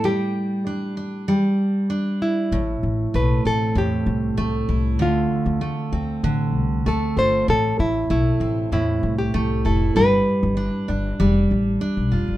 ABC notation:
X:1
M:4/4
L:1/16
Q:1/4=97
K:Am
V:1 name="Nylon-string guitar"
G8 z6 E2- | E4 B2 A2 G8 | F8 z4 A2 c2 | A2 E2 E4 E3 G3 A2 |
B8 z8 |]
V:2 name="Steel-string acoustic guitar"
G,4 D2 D2 G,4 D4 | A,,4 A,2 C2 A,,4 A,2 E2 | D,4 A,2 C2 D,4 A,2 F2 | A,,4 A,2 C2 A,,4 A,2 E2 |
G,4 D2 D2 G,4 D2 F2 |]
V:3 name="Upright bass" clef=bass
z16 | A,,,2 A,,,2 B,,,2 A,,,2 E,,2 C,,2 C,,2 C,,2 | D,,2 z D,,2 z D,,2 A,,,2 C,,2 D,,2 G,,,2 | A,,,2 A,,,2 B,,,2 A,,,2 E,,2 C,,2 C,,2 F,,,2 |
G,,,2 z G,,,2 z G,,,2 F,,,2 A,,,2 z B,,, F,,, G,,, |]